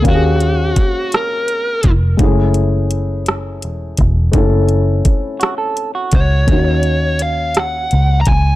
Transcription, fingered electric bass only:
\new Staff \with { instrumentName = "Fingered electric bass" } { \clef bass \time 6/8 \key ges \major \tempo 4. = 56 ees,4 r4. f,,8 | ges,,2 fes,,8 fes,,8 | ges,,4 r4. des,8 | ees,2 des,8 des,8 | }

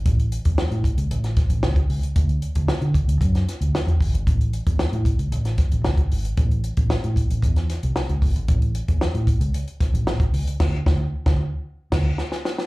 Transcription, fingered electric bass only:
\new Staff \with { instrumentName = "Fingered electric bass" } { \clef bass \time 4/4 \key d \lydian \tempo 4 = 114 a,,8 r16 e,16 r16 a,16 r16 cis,16 a,,8 r16 a,,16 cis,16 r16 cis,16 r16 | d,8 r16 d,16 r16 d16 r16 d,16 fis,8 r16 d,16 r16 e,16 g,,16 gis,,16 | a,,8 r16 e,16 r16 a,16 r16 cis,16 a,,8 r16 a,,16 cis,16 r16 gis,,16 r16 | a,,8 r16 a,,16 r16 a,16 r16 a,,16 e,8 r16 c,16 r16 cis,16 g,,16 gis,,16 |
a,,8 r16 e,16 r16 a,16 r16 cis,16 r8. a,,16 a,,16 r16 cis,16 r16 | d,8 d,8 r16 d,8 r8. d,8 r4 | }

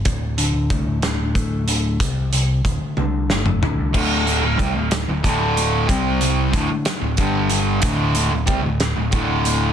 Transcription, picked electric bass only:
\new Staff \with { instrumentName = "Picked electric bass" } { \clef bass \time 6/8 \key c \lydian \tempo 4. = 62 d,,8. d,,16 c,16 d,,8 d,,16 d,,4 | c,4 d,,16 r16 c,8 g,,8 d,,16 c,16 | d,,8. d,,16 c,16 d,,8 d,,16 d,,4 | c,4 d,,16 r8 d,,16 g,,4 |
d,,8. d,,16 c,16 d,,8 d,,16 d,,4 | }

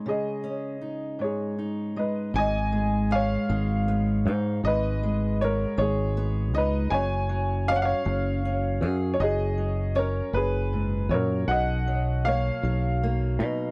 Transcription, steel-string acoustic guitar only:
\new Staff \with { instrumentName = "Steel-string acoustic guitar" } { \clef bass \time 6/8 \key gis \dorian \tempo 4. = 53 << { r8 cis'8 dis'4 dis'4 | r4 b4 b8 dis'8 | r4 b4 b8 dis'8 | r4 cis'4 cis'8 gis'8 |
r4 cis'2 | r4 ais4 ais8 dis'8 | } \\ { cis4. gis,4 gis8 | gis,8 gis4 gis4. | gis,8 gis4 gis4. | fis,8 fis4 fis4. |
fis,8 fis4 fis,8 gis,8 ais,8 | b,8 fis4 fis4. | } >> }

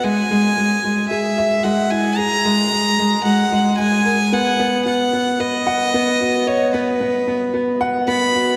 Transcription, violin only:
\new Staff \with { instrumentName = "Violin" } { \time 4/4 \key e \lydian \tempo 4 = 112 gis''2 e''4 fis''8 gis''8 | ais''2 fis''4 gis''4 | fis''4 fis''4 dis''2 | cis''8 b'2 r8 b''4 | }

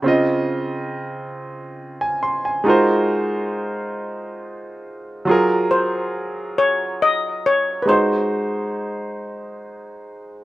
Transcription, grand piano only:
\new Staff \with { instrumentName = "Grand piano" } { \time 6/8 \key aes \mixolydian \tempo 4. = 46 << { r2 r16 aes''16 c'''16 aes''16~ | aes''16 r2 r8. | r2. | r2. | } \\ { <des c' f' ees''>2. | <aes ees' f' ges' bes' c''>2. | <ges f' aes' bes'>2. | <aes ees' ges' c''>2. | } >> }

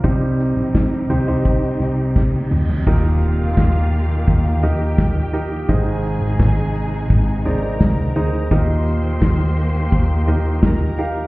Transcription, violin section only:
\new Staff \with { instrumentName = "Violin section" } { \time 4/4 \key ees \major \tempo 4 = 85 r1 | <f' f''>2~ <f' f''>8 <g' g''>4. | <aes' aes''>2~ <aes' aes''>8 <bes' bes''>4. | <c'' c'''>2. <bes' bes''>4 | }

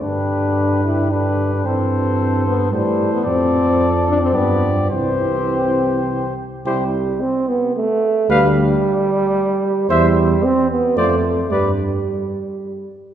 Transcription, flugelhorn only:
\new Staff \with { instrumentName = "Flugelhorn" } { \time 3/4 \key a \dorian \tempo 4 = 111 g'2 g'4 | a'2 a'4 | \key c \major a'2 g'4 | g'2~ g'8 r8 |
g'8 r2 r8 | b'8 r2 r8 | c''8 r4. c''8 r8 | b'8 r2 r8 | }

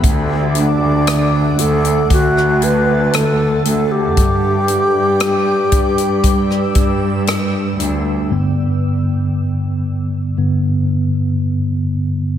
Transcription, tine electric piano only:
\new Staff \with { instrumentName = "Tine electric piano" } { \clef bass \time 4/4 \key g \major \tempo 4 = 58 d8 a8 d8 a8 d8 a8 d8 a8 | g8 d'8 g8 d'8 g8 d'8 g8 d'8 | <g, d b>2 <g, d b>8 r4. | }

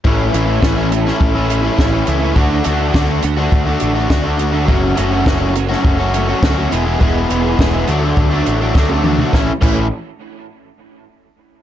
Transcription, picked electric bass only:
\new Staff \with { instrumentName = "Picked electric bass" } { \clef bass \time 4/4 \key a \major \tempo 4 = 103 a,,8 a,,8 a,,4 a,,4 a,,8 cis,8 | d,8 d,8 d,8 d,8 d,8 a,,8 d,4 | fis,,8 fis,,8 fis,,4 fis,,4 d,8 e,,8 | e,,8 e,,8 e,,8 d,8 d,8 a,,8 d,4 |
a,,8 a,,8 r2. | }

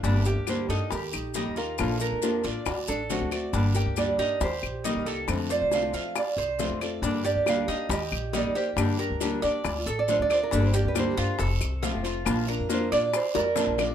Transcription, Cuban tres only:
\new Staff \with { instrumentName = "Cuban tres" } { \time 4/4 \key g \minor \tempo 4 = 138 d'8 g'4 ees'8 g'4 ees'8 f'8~ | f'8 bes'4 d''4 a'4 d''8 | d'8 g'4 ees'8 g'4 ees'8 a'8~ | a'8 c''4 f''4 c''4 d''8 |
d'8 g'4 ees'8 g'4 ees'8 g'8~ | g'8 bes'4 d''4 a'4 d''8 | d'8 g'4 f'8 a'4 f'8 f'8~ | f'8 bes'4 d''4 bes'4 d''8 | }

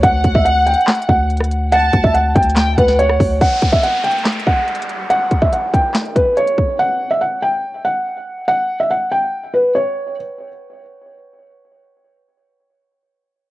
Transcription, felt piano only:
\new Staff \with { instrumentName = "Felt piano" } { \time 4/4 \key d \major \tempo 4 = 142 fis''8. e''16 fis''8 g''4 fis''4. | fis''8. e''16 fis''8 g''4 b'8 cis''4 | fis''8. e''16 fis''8 g''4 fis''4. | fis''8. e''16 fis''8 g''4 b'8 cis''4 |
fis''8. e''16 fis''8 g''4 fis''4. | fis''8. e''16 fis''8 g''4 b'8 cis''4 | r1 | r1 | }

